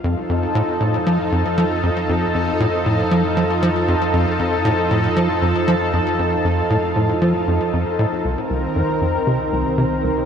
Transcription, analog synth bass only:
X:1
M:4/4
L:1/8
Q:1/4=117
K:Fmix
V:1 name="Analog synth bass" clef=bass
F,, F,, A,, A,, F, F,, F, F,, | F,, F,, A,, A,, F, F, F, F,, | F,, F,, A,, A,, F, F,, F, F,, | F,, F,, A,, A,, F, F,, F,, A,, |
C,, C,, F,, F,, C, C,, C, C,, |]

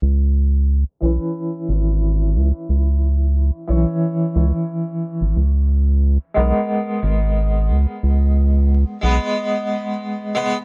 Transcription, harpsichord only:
X:1
M:4/4
L:1/8
Q:"Swing 16ths" 1/4=90
K:C#dor
V:1 name="Harpsichord"
z3 [E,CB]4- [E,CB]- | [E,CB]3 [E,Cc]4- [E,Cc] | z3 [G,B,A]4- [G,B,A]- | [G,B,A]3 [G,B,B]4 [G,B,B] |]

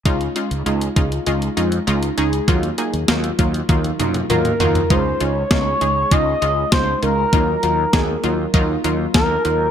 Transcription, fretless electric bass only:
X:1
M:4/4
L:1/16
Q:1/4=99
K:Db
V:1 name="Fretless electric bass" clef=bass
D,,2 z D,, D,,2 D,,2 D,,2 F,,2 D,,2 D,,2 | E,,2 z E,, E,,2 E,,2 E,,2 G,,2 E,,2 E,,2 | D,,2 D,,2 D,,2 D,,2 D,,2 D,,2 D,,2 D,,2 | E,,2 E,,2 E,,2 E,,2 E,,2 E,,2 E,,2 E,,2 |]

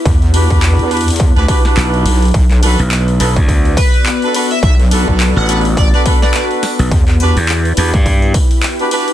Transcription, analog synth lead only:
X:1
M:4/4
L:1/16
Q:"Swing 16ths" 1/4=105
K:Bm
V:1 name="Analog synth lead"
z16 | z8 z2 B3 z2 e | e z4 f2 z d d z d d z3 | z16 |]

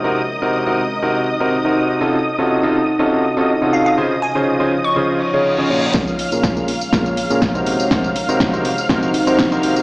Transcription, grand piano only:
X:1
M:4/4
L:1/16
Q:"Swing 16ths" 1/4=122
K:Bbm
V:1 name="Grand piano"
[C,CEGB] z2 [C,CEGB]2 [C,CEGB] z2 [C,CEGB]2 z [C,CEGB] z [C,CEGB]3 | [C,DEFG=A] z2 [C,DEFGA]2 [C,DEFGA] z2 [C,DEFGA]2 z [C,DEFGA] z [C,DEFGA]3 | [D,DFAc] z2 [D,DFAc]2 [D,DFAc] z2 [D,DFAc]2 z [D,DFAd]2 [D,DFAd] [B,,DFAd] z | [B,,DFAB] z2 [B,,DFAB]2 [B,,DFAB] z2 [B,,DFAB]2 z [B,,DFAB] z [C,EGBc]3 |
[C,EGBc] z2 [C,EGBc]2 [C,EGBc] z2 [C,EGBc]2 z [C,EGBc] z [C,EGBc]3 |]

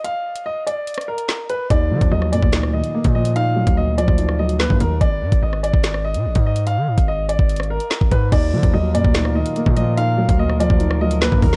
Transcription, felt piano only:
X:1
M:4/4
L:1/8
Q:1/4=145
K:Ebm
V:1 name="Felt piano" clef=bass
z8 | E F, G, B,, E E, B, F, | E G, B,, F, E G, B, E, | z8 |
z8 | E F, G, B,, E E, B, F, | E G, B,, F, E G, B, E, |]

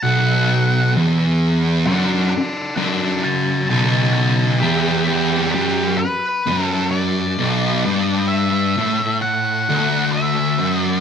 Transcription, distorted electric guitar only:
X:1
M:4/4
L:1/8
Q:1/4=65
K:Bm
V:1 name="Distorted electric guitar" clef=bass
B,,,2 E,,2 F,, z F,,2 | B,,,2 E,,2 F,, z F,,2 | B,,, G,,2 A,,2 D,,2 F,, |]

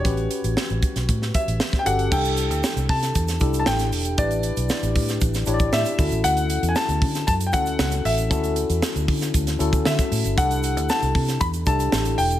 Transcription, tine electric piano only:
X:1
M:4/4
L:1/8
Q:1/4=116
K:D
V:1 name="Tine electric piano"
[CFGB]3 z4 [CFGA] | [DEGA]3 z2 [DEGA]3 | [DEGB]3 z2 [DEGcd]2 [CEFA]- | [CEFA]2 z3 [CEFA]3 |
[CEFA]3 z2 [CEFA]3 | [DEGA]3 z2 [DEGA]3 |]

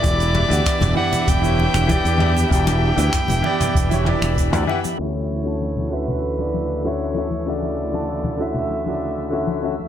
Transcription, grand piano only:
X:1
M:4/4
L:1/16
Q:1/4=97
K:D
V:1 name="Grand piano"
[E,EGd]3 [E,EGf]3 [E,EGd]3 [E,EGc]3 [E,EGd]2 [E,EGd] z | [E,EGd]3 [E,EGg]3 [E,EGd]3 [E,EGc] [E,EGd]3 [E,EGd] [E,EGf] z | [D,CFe]3 [D,CFa]3 [D,CFe]3 [C,D,Fd]3 [D,CFe]2 [D,CFe] z | [C,D,Fe]3 [C,D,Fa]3 [D,CFe]3 [C,D,Fd]3 [D,CFe]2 [D,CFe] z |]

